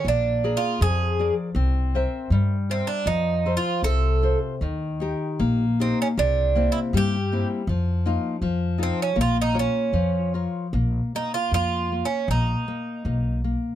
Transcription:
<<
  \new Staff \with { instrumentName = "Nylon-string guitar" } { \time 2/4 \key bes \minor \tempo 4 = 79 bes8 <aes' bes' d''>8 f8 <aes' bes' d''>8 | c'8 <bes' c'' e''>8 g8 <bes' c'' e''>8 | f8 <f' a' c''>8 c8 <f' a' c''>8 | ees8 <ees' g' bes'>8 bes8 <ees' g' bes'>8 |
c8 <bes c' e'>8 g8 <bes c' e'>8 | f8 <bes ees' f'>8 f8 <ees' f' a'>8 | bes8 <f' bes' des''>8 f8 <f' bes' des''>8 | bes8 bes8 bes8 bes8 |
bes8 bes8 bes8 bes8 | }
  \new Staff \with { instrumentName = "Bouzouki" } { \time 2/4 \key bes \minor \tuplet 3/2 { d'4 f'8 } aes'8. r16 | r4. c'16 d'16 | \tuplet 3/2 { ees'4 f'8 } a'8. r16 | r4. c'16 des'16 |
\tuplet 3/2 { d'4 e'8 } g'8. r16 | r4. c'16 des'16 | f'16 ees'16 des'4 r8 | r8 ees'16 f'16 \tuplet 3/2 { f'4 des'8 } |
ees'4. r8 | }
  \new Staff \with { instrumentName = "Upright bass" } { \clef bass \time 2/4 \key bes \minor bes,,4 f,4 | c,4 g,4 | f,4 c,4 | ees,4 bes,,4 |
c,4 g,4 | f,4 f,4 | bes,,4 f,4 | bes,,8 r8 f,4 |
bes,,8 r8 ces,4 | }
>>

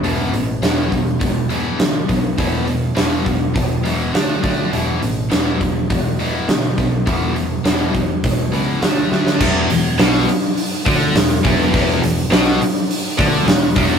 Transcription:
<<
  \new Staff \with { instrumentName = "Distorted electric guitar" } { \clef bass \time 4/4 \key d \lydian \tempo 4 = 103 <e, b, e>8 <e, b,>8 <e, b, e>8 <e, b,>8 <e, b,>8 <e, b, e>8 <e, b,>8 <e, b,>8 | <e, b, e>8 <e, b,>8 <e, b, e>8 <e, b,>8 <e, b,>8 <e, b, e>8 <d a d'>8 <d a d'>8 | <e, b, e>8 <e, b,>8 <e, b, e>8 <e, b,>8 <e, b,>8 <e, b, e>8 <e, b,>8 <e, b,>8 | <e, b, e>8 <e, b,>8 <e, b, e>8 <e, b,>8 <e, b,>8 <e, b, e>8 <d a d'>8 <d a d'>8 |
e,8 e,8 b,8 r4 d8 e,8 e,8 | e,8 e,8 b,8 r4 d8 e,8 e,8 | }
  \new Staff \with { instrumentName = "Distorted electric guitar" } { \clef bass \time 4/4 \key d \lydian r1 | r1 | r1 | r1 |
e,8 e,8 b,8 r4 d8 e,8 e,8 | e,8 e,8 b,8 r4 d8 e,8 e,8 | }
  \new Staff \with { instrumentName = "Picked electric bass" } { \clef bass \time 4/4 \key d \lydian e,,8 a,,8 e,,8 e,,8 e,,4 d,8 b,,8 | e,,4 e,,8 e,,8 e,,8 e,,8 d,8 d,8 | e,,8 a,,8 e,,8 e,,8 e,,4 d,8 b,,8 | e,,4 e,,8 e,,8 e,,8 cis,8 d,8 d,8 |
e,,8 e,,8 b,,8 r4 d,8 e,,8 e,,8 | e,,8 e,,8 b,,8 r4 d,8 e,,8 e,,8 | }
  \new DrumStaff \with { instrumentName = "Drums" } \drummode { \time 4/4 hho8 hho8 <hho sn>8 <hho bd>8 <hho bd>8 hho8 <hho sn>8 <hho bd>8 | <hho bd>8 hho8 <hho sn>8 <hho bd>8 <hho bd>8 hho8 <hho sn>8 <hho bd>8 | hho8 hho8 <hho sn>8 <hho bd>8 <hho bd>8 hho8 <hho sn>8 <hho bd>8 | <hho bd>8 hho8 <hho sn>8 <hho bd>8 <hho bd>8 hho8 <hho sn>8 sn16 sn16 |
<cymc bd>8 hho8 <hho sn>16 sn16 hho8 hho8 <hho bd>8 <hho sn>16 sn16 <hho bd>8 | <hho bd>8 hho8 <hho sn>16 sn16 hho8 hho8 <hho bd>8 <hho sn>8 <hho bd>8 | }
>>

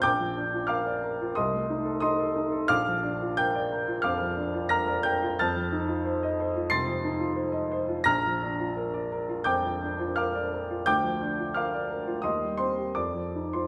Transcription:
\new Staff \with { instrumentName = "Upright piano" } { \time 4/4 \key bes \major \tempo 4 = 89 << { <g'' d''' g'''>4 <f'' d''' f'''>4 <ees'' c''' ees'''>4 <ees'' c''' ees'''>4 | <f'' d''' f'''>4 <g'' g'''>4 <f'' d''' f'''>4 <bes'' f''' bes'''>8 <g'' g'''>8 | <a'' f''' a'''>2 <c''' a''' c''''>2 | <bes'' f''' bes'''>2 <g'' d''' g'''>4 <f'' d''' f'''>8 r8 |
<g'' d''' g'''>4 <f'' d''' f'''>4 <ees'' c''' ees'''>8 <c'' c'''>8 <d'' d'''>8. <c'' c'''>16 | } \\ { bes,,16 f16 d'16 f'16 bes'16 d''16 bes'16 f'16 c,16 a16 ees'16 a'16 ees'16 a'16 ees'16 a'16 | bes,,16 f16 d'16 f'16 bes'16 d''16 bes'16 f'16 f,16 f16 d'16 f'16 bes'16 d''16 bes'16 f'16 | f,16 f16 ees'16 f'16 c''16 ees''16 c''16 f'16 c16 f16 ees'16 f'16 c''16 ees''16 c''16 f'16 | bes,,16 f16 d'16 f'16 bes'16 d''16 bes'16 f'16 f,16 f16 d'16 f'16 bes'16 d''16 bes'16 f'16 |
d,16 f16 d'16 f'16 bes'16 d''16 bes'16 f'16 ees,16 g16 c'16 g'16 f,16 f16 ees'16 f'16 | } >> }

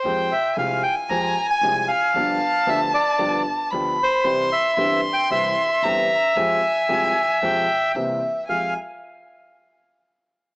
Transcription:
<<
  \new Staff \with { instrumentName = "Violin" } { \time 4/4 \key f \minor \tempo 4 = 114 g''4 aes''2. | a''2. b''4 | c'''4 c'''2 bes''4 | aes''2 g''4 e''4 |
aes''8 r2. r8 | }
  \new Staff \with { instrumentName = "Bandoneon" } { \time 4/4 \key f \minor c''8 e''8 f''8 g''8 bes''8. aes''8. f''8~ | f''4 e''8 d''4 r4 c''8~ | c''8 e''8~ \tuplet 3/2 { e''8. r16 g''8 } e''2~ | e''2. r4 |
f''8 r2. r8 | }
  \new Staff \with { instrumentName = "Grand piano" } { \clef bass \time 4/4 \key f \minor <f, f aes c' g'>8 r8 <c, c f aes c' g'>8 r8 <f, f aes c' g'>8 r8 <c, c f aes c' g'>8 r8 | <g,, g, f b d' g'>8 r8 <d, d f b d' g'>8 r8 <g,, g, f b d' g'>8 r8 <d, d f b d' g'>8 r8 | <c, c e g c' g'>8 r8 <g,, g, e g c' g'>8 r8 <c, c e g c' g'>8 r8 <g,, g, e g c' g'>8 r8 | <f, f aes c' g'>8 r8 <c, c f aes c' g'>8 r8 <f, f aes c' g'>8 r8 <c, c e bes c' g'>8 r8 |
<f, aes f' g'>8 r2. r8 | }
  \new Staff \with { instrumentName = "Upright bass" } { \clef bass \time 4/4 \key f \minor f,8 r8 c,8 r8 f,8 r8 c,8 r8 | g,,8 r8 d,8 r8 g,,8 r8 d,8 r8 | c,8 r8 g,,8 r8 c,8 r8 g,,8 r8 | f,8 r8 c,8 r8 f,8 r8 c,8 r8 |
f,8 r2. r8 | }
>>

